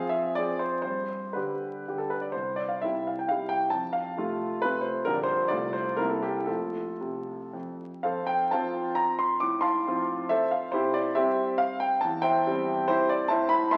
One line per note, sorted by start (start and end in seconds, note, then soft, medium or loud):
0.00 0.33 F3 medium
0.00 0.34 C4 medium
0.00 0.34 G#4 medium
0.00 0.12 F5 loud
0.09 0.36 E5 medium
0.35 0.81 F3 medium
0.35 0.81 C4 medium
0.35 0.82 G#4 medium
0.35 0.60 D5 loud
0.59 0.80 C5 medium
0.82 1.35 G2 medium
0.82 1.35 C5 medium
1.33 1.84 D3 soft
1.33 1.84 G3 soft
1.33 1.85 G4 medium
1.33 1.99 B4 medium
1.88 2.32 D3 soft
1.88 2.32 G3 soft
1.88 2.33 G4 soft
1.98 2.12 A4 medium
2.10 2.24 B4 medium
2.21 2.35 D5 medium
2.32 2.81 C2 medium
2.32 2.57 C5 medium
2.56 2.70 D5 medium
2.69 2.82 F5 medium
2.82 3.26 C3 medium
2.82 3.27 G3 soft
2.82 3.26 E4 medium
2.82 3.07 E5 medium
3.07 3.19 F5 medium
3.19 3.30 G5 medium
3.29 3.69 C3 soft
3.29 3.69 G3 soft
3.29 3.69 E4 soft
3.29 3.51 F5 medium
3.49 3.72 G5 medium
3.70 4.17 F2 medium
3.70 3.93 A5 medium
3.93 4.62 F5 medium
4.17 4.59 C3 medium
4.17 4.60 A3 medium
4.17 4.60 F4 medium
4.62 5.02 C3 soft
4.62 5.02 A3 medium
4.62 5.02 F4 medium
4.62 4.84 B4 loud
4.81 5.04 C5 medium
5.05 5.51 A#1 medium
5.05 5.48 D3 medium
5.05 5.48 G3 soft
5.05 5.49 F4 soft
5.05 5.16 A#4 loud
5.14 5.26 D5 medium
5.23 5.49 C5 medium
5.48 5.97 C2 medium
5.48 5.96 C3 medium
5.48 5.96 A3 medium
5.48 5.96 F4 medium
5.48 5.74 D5 loud
5.73 5.99 C5 medium
5.97 6.46 C2 medium
5.97 6.43 C3 medium
5.97 6.43 A#3 medium
5.97 6.44 E4 medium
5.97 6.10 A#4 medium
6.10 6.23 A4 medium
6.22 6.47 G4 medium
6.46 6.85 F3 medium
6.46 6.90 A3 soft
6.46 6.90 F4 soft
6.46 7.79 A4 medium
7.01 7.38 C3 medium
7.53 7.89 F2 medium
8.03 8.51 F2 medium
8.03 8.27 A4 medium
8.03 8.27 C5 medium
8.03 8.28 F5 medium
8.27 8.51 G5 medium
8.51 9.39 F3 medium
8.51 9.39 C4 medium
8.51 9.39 F4 medium
8.51 8.95 C5 medium
8.51 8.95 F5 medium
8.51 8.98 A5 medium
8.95 9.19 A#5 medium
9.19 9.41 C6 medium
9.40 9.85 A2 medium
9.40 9.63 D6 medium
9.61 10.27 F5 medium
9.61 10.27 A5 medium
9.61 10.30 C6 medium
9.87 10.71 F3 medium
9.87 10.71 C4 medium
9.87 10.72 F4 medium
10.29 10.51 A4 medium
10.29 10.51 C5 medium
10.29 10.52 E5 loud
10.51 10.74 F5 medium
10.72 11.17 C3 medium
10.72 10.94 E4 medium
10.72 10.94 G4 medium
10.72 10.95 C5 medium
10.94 11.17 D5 medium
11.15 12.00 G3 medium
11.15 12.00 C4 medium
11.15 11.58 G4 medium
11.15 11.58 C5 medium
11.15 11.61 E5 medium
11.58 11.81 F5 loud
11.80 12.03 G5 medium
12.01 12.46 E2 medium
12.01 12.24 A5 medium
12.22 12.86 C5 medium
12.22 12.86 E5 medium
12.22 12.90 G5 loud
12.47 13.28 G3 medium
12.47 13.28 C4 medium
12.88 13.10 E4 medium
12.88 13.10 G4 medium
12.88 13.10 C5 loud
13.09 13.31 D5 loud
13.28 13.72 A2 medium
13.28 13.50 C5 medium
13.28 13.50 E5 medium
13.28 13.50 A5 loud
13.49 13.72 B5 loud
13.71 13.77 A3 medium
13.71 13.77 E5 medium
13.71 13.77 A5 medium
13.71 13.77 C6 loud